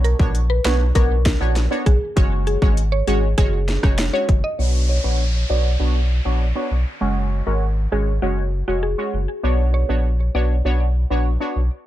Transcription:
Already playing: B1 B3 D4 F#4 C#5
0.04 A#4, closed hi-hat
0.20 A#1 B3 D4 F#4 C#5, kick
0.35 closed hi-hat
0.50 B4
0.65 B1 B3 D4 F#4 B4 C#5, snare, closed hi-hat
0.95 B1 B3 D4 F#4 A#4 C#5, kick, closed hi-hat
1.26 kick, snare, closed hi-hat
1.40 A#1 B3 D4 F#4 C#5
1.56 snare, closed hi-hat
1.71 B3 D4 F#4 C#5
1.86 B1 G#4, kick, closed hi-hat
2.16 F#1 G#3 C#4 F#4 C#5, kick, closed hi-hat
2.47 G#4, closed hi-hat
2.62 G#1 G#3 C#4 F#4 C#5, kick
2.77 closed hi-hat
2.92 C#5
3.07 G#1 G#3 C#4 F#4 G#4 C#5, closed hi-hat
3.38 F#1 G#3 C#4 F#4 G#4 C#5, kick, closed hi-hat
3.68 snare, closed hi-hat
3.83 F1 G#3 C#4 F#4 C#5, kick, cross-stick
3.98 snare, closed hi-hat
4.13 G#3 C#4 F#4 C#5
4.29 F#1, kick, closed hi-hat
4.44 D#5
4.59 B1 B3 D4 F#4 C#5, downlifter
4.89 C#5
5.04 A#1 B3 D4 F#4 C#5
5.50 B1 B3 D4 F#4 C#5 D5
5.80 B1 B3 D4 F#4 C#5
6.25 A#1 B3 D4 F#4 C#5
6.55 B3 D4 F#4 C#5
6.71 B1
7.01 F#1 G#3 C#4 F#4 C#5
7.47 G#1 G#3 C#4 F#4 A#4 C#5
7.92 G#1 G#3 C#4 F#4 G#4 C#5
8.22 F#1 G#3 C#4 F#4 C#5
8.68 F1 G#3 C#4 F#4 C#5
8.83 G#4
8.98 G#3 C#4 F#4 C#5
9.14 F#1
9.43 B1 B3 D4 F#4 C#5
9.74 C#5
9.89 A#1 B3 D4 F#4 C#5
10.35 B1 B3 D4 F#4 C#5 D5
10.65 B1 B3 D4 F#4 C#5
11.10 A#1 B3 D4 F#4 C#5
11.40 B3 D4 F#4 C#5
11.56 B1

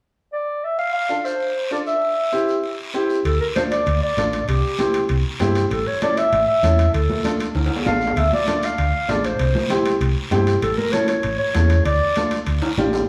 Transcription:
0.33 D5
0.64 E5
0.79 F5, long guiro
0.93 F5
1.09 D4 F4 A4, short guiro
1.25 C5, short guiro
1.40 long guiro
1.71 D4 F4 A4 D5, short guiro
1.87 E5, short guiro
2.02 long guiro
2.32 C4 E4 G4, short guiro
2.48 short guiro
2.64 long guiro
2.94 C4 E4 G4, short guiro
3.10 short guiro
3.25 D2 A4, high timbale, long guiro
3.40 A#4
3.56 D4 F4 A4 C5, high conga, high timbale, short guiro
3.71 D5, high timbale, short guiro
3.86 D2, high timbale, long guiro
4.02 D5
4.17 A1 D4 F4 A4, high conga, high timbale, short guiro
4.32 high timbale, short guiro
4.48 C2 G4, high timbale, long guiro
4.78 C4 E4 G4, high conga, high timbale, short guiro
4.94 high timbale, short guiro
5.09 C2, high timbale, long guiro
5.40 G2 C4 E4 G4, high conga, high timbale, low timbale, short guiro
5.55 high timbale, short guiro
5.71 A1 A4, high timbale, long guiro
5.87 C#5
6.02 C#4 E4 A4 D5, high conga, high timbale, short guiro
6.17 E5, high timbale, short guiro
6.32 A1, high timbale, long guiro
6.47 E5
6.63 E2 C#4 E4 A4, high conga, high timbale, short guiro
6.79 high timbale, short guiro
6.94 D2 A4, high timbale, long guiro
7.10 high conga
7.24 D4 F4 A4, high conga, high timbale, short guiro
7.40 high timbale, short guiro
7.55 D2, high timbale, long guiro
7.66 high timbale
7.76 low timbale
7.86 A1 D4 F4 A4 F5, high conga, low timbale, short guiro
8.01 short guiro
8.07 low timbale
8.16 D2 E5, high timbale, long guiro
8.33 D5, high conga
8.47 D4 F4 A4, high conga, high timbale, short guiro
8.63 F5, high timbale, short guiro
8.78 D2, high timbale, long guiro
9.08 A1 D4 F4 A4 D5, high conga, high timbale, low timbale, short guiro
9.24 C5, high timbale, short guiro
9.39 C2, high timbale, long guiro
9.55 high conga
9.70 C4 E4 G4, high conga, high timbale, short guiro
9.86 high timbale, short guiro
10.00 C2, high timbale, long guiro
10.31 G2 C4 E4 G4, high conga, high timbale, low timbale, short guiro
10.47 high timbale, short guiro
10.62 A1 A4, high timbale, long guiro
10.77 A#4, high conga
10.92 C#4 E4 A4 C#5, high conga, high timbale, short guiro
11.08 C#5, high timbale, short guiro
11.23 A1, high timbale, long guiro
11.39 C#5
11.54 E2 C#4 E4 A4, high conga, high timbale, low timbale, short guiro
11.70 high timbale, short guiro
11.85 D2 D5, high timbale, long guiro
12.16 D4 F4 A4, high conga, high timbale, short guiro
12.31 high timbale, short guiro
12.46 D2, high timbale, long guiro
12.62 high timbale
12.77 A1 D4 F4 G4, high conga, high timbale, short guiro
12.93 low timbale, short guiro

